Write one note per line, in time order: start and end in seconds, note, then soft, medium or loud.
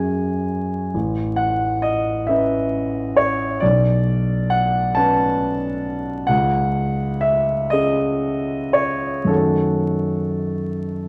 0.00 0.89 F#2 soft
0.00 0.89 C#4 soft
0.00 0.89 G#4 soft
0.00 0.92 G#5 medium
0.94 3.59 A1 soft
1.36 1.83 F#5 medium
1.82 2.28 D#5 medium
2.27 3.59 C#4 soft
2.27 3.59 B4 soft
2.27 3.17 E5 medium
3.16 3.62 C#5 medium
3.60 6.26 B1 soft
3.60 4.51 D5 medium
4.50 4.95 F#5 medium
4.95 6.26 C#4 soft
4.95 6.26 B4 soft
4.95 6.29 A5 medium
6.27 9.26 C#2 soft
6.27 7.23 F#5 medium
7.21 7.71 E5 medium
7.70 9.26 C#4 soft
7.70 9.26 G#4 soft
7.70 8.75 D#5 medium
8.73 9.29 C#5 medium
9.25 11.08 F#2 soft
9.25 11.08 D#3 soft
9.25 11.08 A3 soft
9.25 11.08 C#4 soft
9.25 11.08 F#4 soft
9.25 10.87 A4 medium